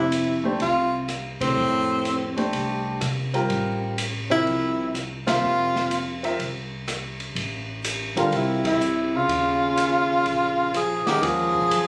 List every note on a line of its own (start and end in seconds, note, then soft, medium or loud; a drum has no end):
0.00 0.56 F2 medium
0.00 0.41 C3 medium
0.00 0.41 E4 medium
0.12 hi-hat pedal medium
0.12 ride medium
0.44 0.58 A3 medium
0.44 0.58 D4 medium
0.44 0.59 G4 medium
0.44 0.59 C5 medium
0.60 1.36 C2 medium
0.60 1.05 C3 medium
0.60 1.06 F4 medium
0.60 ride soft
1.08 cross-stick medium
1.08 hi-hat pedal soft
1.08 ride medium
1.40 2.34 A2 medium
1.40 1.55 C3 medium
1.40 2.33 C4 loud
1.40 kick medium
1.40 ride medium
1.56 2.49 F2 medium
2.05 hi-hat pedal soft
2.05 ride medium
2.36 2.98 A3 medium
2.36 2.98 D4 medium
2.36 2.98 G4 medium
2.36 2.98 C5 medium
2.36 ride soft
2.53 2.98 C2 medium
2.53 ride medium
3.01 3.46 C3 medium
3.01 cross-stick soft
3.01 hi-hat pedal soft
3.01 ride medium
3.34 3.94 G3 medium
3.34 3.95 C4 medium
3.34 3.95 F4 medium
3.34 3.95 A#4 medium
3.34 ride soft
3.49 4.42 A1 medium
3.49 ride medium
3.98 hi-hat pedal medium
3.98 ride medium
4.30 4.90 C3 medium
4.30 4.91 F3 medium
4.30 4.91 C4 medium
4.30 4.91 E4 loud
4.30 4.92 A#4 medium
4.30 4.92 E5 medium
4.30 ride soft
4.46 5.39 C2 medium
4.46 ride soft
4.95 cross-stick medium
4.95 hi-hat pedal medium
4.95 ride soft
5.26 6.19 C3 medium
5.26 5.88 C4 medium
5.26 6.20 F4 loud
5.26 5.88 F4 medium
5.26 5.88 A#4 medium
5.26 5.89 E5 medium
5.26 snare medium
5.26 ride medium
5.42 6.35 F2 medium
5.76 snare soft
5.91 hi-hat pedal medium
5.91 ride medium
6.23 6.37 C4 medium
6.23 6.38 F4 medium
6.23 6.38 A#4 medium
6.23 6.38 E5 medium
6.23 ride soft
6.39 7.32 C2 medium
6.39 ride soft
6.88 cross-stick medium
6.88 hi-hat pedal medium
6.88 ride medium
7.20 ride soft
7.35 8.12 A1 medium
7.35 ride medium
7.84 hi-hat pedal medium
7.84 ride medium
8.16 8.31 G1 medium
8.16 8.36 D3 medium
8.16 8.78 G3 medium
8.16 8.78 C4 medium
8.16 8.78 F4 medium
8.16 8.37 F4 medium
8.16 8.78 A#4 medium
8.16 ride soft
8.31 9.24 C2 medium
8.31 8.66 C3 medium
8.31 ride medium
8.36 8.66 E4 medium
8.65 9.16 C3 medium
8.65 9.18 E4 loud
8.65 kick medium
8.65 ride medium
8.81 hi-hat pedal medium
9.15 10.74 C#3 medium
9.15 10.76 F4 medium
9.28 10.21 D#2 medium
9.28 ride medium
9.77 hi-hat pedal medium
9.77 ride medium
10.25 11.02 A#1 medium
10.25 ride soft
10.74 11.08 F3 medium
10.74 11.09 G#4 medium
10.74 cross-stick soft
10.74 hi-hat pedal soft
10.74 ride medium
11.06 11.25 D#3 medium
11.06 11.67 G#3 medium
11.06 11.68 C#4 medium
11.06 11.24 G4 medium
11.06 11.68 A#4 medium
11.06 11.68 F#5 medium
11.06 muted upright bass stroke soft
11.06 snare soft
11.06 ride soft
11.21 11.69 D#2 medium
11.21 11.87 F3 loud
11.21 11.87 G#4 medium
11.21 ride medium
11.55 kick soft
11.70 11.87 F#2 medium
11.70 hi-hat pedal soft
11.70 ride medium